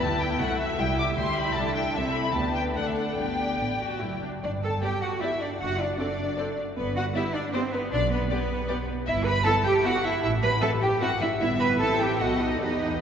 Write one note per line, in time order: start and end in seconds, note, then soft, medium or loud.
0.00 0.37 D2 medium
0.00 0.38 B3 medium
0.00 0.77 E4 medium
0.00 0.39 G4 medium
0.00 0.40 B4 medium
0.00 0.20 A5 medium
0.21 0.40 G5 medium
0.39 0.76 C2 medium
0.39 0.79 A3 medium
0.39 0.79 F#4 soft
0.39 0.78 E5 medium
0.39 0.60 F#5 medium
0.60 0.79 E5 medium
0.78 1.15 C2 medium
0.78 1.16 G3 soft
0.78 1.16 E4 soft
0.78 1.17 E4 soft
0.78 1.93 E5 medium
0.78 0.98 G5 medium
0.98 1.06 D6 medium
1.17 1.53 D2 medium
1.17 1.56 G3 soft
1.17 1.94 E4 soft
1.17 1.56 G4 soft
1.17 1.36 C6 medium
1.36 1.56 B5 medium
1.56 1.92 C2 medium
1.56 1.93 C2 medium
1.56 1.95 D4 soft
1.56 2.35 A4 medium
1.56 1.75 A5 medium
1.75 1.95 G5 medium
1.95 2.32 C2 medium
1.95 2.35 C4 soft
1.95 2.34 E4 soft
1.95 2.15 E5 medium
1.95 2.34 E5 soft
2.14 2.34 B5 medium
2.34 2.73 D2 medium
2.34 2.73 D2 soft
2.34 2.75 B3 soft
2.34 2.74 D4 soft
2.34 2.76 G4 soft
2.34 2.75 B4 soft
2.34 2.55 A5 medium
2.55 2.63 G5 medium
2.75 3.14 D2 soft
2.75 3.15 D2 soft
2.75 3.17 A3 soft
2.75 3.16 D4 soft
2.75 3.17 A4 soft
2.75 3.16 D5 soft
2.75 2.85 F#5 medium
2.86 2.96 E5 medium
2.96 3.17 F#5 soft
3.16 3.57 G1 soft
3.16 3.57 G2 soft
3.16 3.55 B3 soft
3.16 3.55 D4 soft
3.16 4.23 G4 soft
3.16 4.20 D5 soft
3.16 4.22 G5 medium
3.60 3.99 A1 soft
3.60 3.99 A2 soft
3.60 3.68 B3 soft
3.81 4.01 F#4 soft
4.02 4.40 F#1 soft
4.02 4.41 F#2 soft
4.02 4.23 E4 soft
4.23 4.31 D4 soft
4.43 4.76 G1 medium
4.43 4.51 D4 medium
4.43 4.51 D5 medium
4.63 4.71 A4 medium
4.63 4.82 A5 medium
4.82 4.91 B3 soft
4.82 5.01 G4 medium
4.82 4.91 G4 soft
4.82 4.90 D5 soft
4.82 5.02 G5 medium
5.01 5.22 F#4 medium
5.01 5.09 F#5 medium
5.21 5.30 B3 soft
5.21 5.41 E4 medium
5.21 5.30 G4 soft
5.21 5.29 D5 soft
5.21 5.40 E5 medium
5.40 5.49 D4 medium
5.40 5.60 D5 medium
5.60 5.93 F#1 medium
5.60 5.80 F#4 medium
5.60 5.79 F#5 medium
5.79 5.98 D4 medium
5.79 5.98 D5 medium
5.99 6.07 C4 medium
5.99 6.56 D4 medium
5.99 6.07 A4 soft
5.99 6.56 D5 medium
5.99 6.07 D5 soft
6.38 6.47 C4 soft
6.38 6.47 A4 medium
6.38 6.46 D5 medium
6.76 7.08 G1 medium
6.76 6.94 B3 medium
6.76 6.94 B4 medium
6.95 7.03 F#4 medium
6.95 7.04 F#5 medium
7.14 7.24 B3 medium
7.14 7.34 E4 medium
7.14 7.24 G4 medium
7.14 7.22 D5 soft
7.14 7.23 E5 medium
7.34 7.53 D4 medium
7.34 7.42 D5 medium
7.53 7.62 B3 medium
7.53 7.72 C4 medium
7.53 7.62 G4 medium
7.53 7.61 C5 medium
7.53 7.61 D5 medium
7.73 7.92 B3 medium
7.73 7.81 B4 medium
7.92 8.24 B1 medium
7.92 8.00 D4 medium
7.92 8.11 D5 medium
8.11 8.29 B3 medium
8.11 8.28 B4 medium
8.29 8.87 B3 medium
8.29 8.39 B3 medium
8.29 8.39 G4 medium
8.29 8.86 B4 medium
8.29 8.39 D5 medium
8.68 8.77 B3 medium
8.68 8.76 G4 medium
8.68 8.76 D5 medium
9.07 9.39 G1 medium
9.07 9.25 E4 medium
9.07 9.14 E5 medium
9.26 9.46 B4 medium
9.26 9.45 B5 medium
9.45 9.54 B3 medium
9.45 9.54 E4 medium
9.45 9.53 A4 medium
9.45 9.54 E5 medium
9.45 9.65 A5 medium
9.65 9.84 G4 medium
9.65 9.72 G5 medium
9.84 9.92 B3 medium
9.84 9.92 E4 medium
9.84 10.03 F#4 medium
9.84 9.92 E5 medium
9.84 10.03 F#5 medium
10.03 10.22 E4 medium
10.03 10.22 E5 medium
10.23 10.55 A1 medium
10.23 10.31 E4 medium
10.23 10.31 E5 medium
10.42 10.50 B4 medium
10.42 10.61 B5 medium
10.61 10.70 C4 medium
10.61 10.70 E4 medium
10.61 10.69 A4 medium
10.61 10.70 E5 medium
10.61 10.70 A5 medium
10.81 11.01 G4 medium
10.81 10.89 G5 medium
11.00 11.08 C4 medium
11.00 11.09 E4 medium
11.00 11.09 F#4 medium
11.00 11.09 E5 medium
11.00 11.20 F#5 medium
11.21 11.29 E4 medium
11.21 11.39 E5 medium
11.39 11.76 G1 medium
11.39 11.77 B3 medium
11.39 11.48 E4 medium
11.39 11.77 E4 medium
11.39 11.77 E5 medium
11.39 11.48 E5 medium
11.59 11.79 B4 medium
11.59 11.67 B5 medium
11.79 12.20 A1 medium
11.79 12.21 C4 medium
11.79 12.20 E4 medium
11.79 11.99 A4 medium
11.79 12.20 E5 soft
11.79 11.99 A5 medium
11.99 12.20 G4 medium
11.99 12.20 G5 medium
12.20 12.62 B1 medium
12.20 12.61 B3 medium
12.20 12.41 F#4 medium
12.20 12.62 A4 medium
12.20 12.62 D#5 medium
12.20 12.41 F#5 medium
12.41 12.61 D#4 medium
12.41 12.61 D#5 medium
12.62 13.01 E2 medium
12.62 13.01 B3 soft
12.62 13.01 D#4 medium
12.62 13.01 G4 soft
12.62 13.01 B4 soft
12.62 13.01 D#5 medium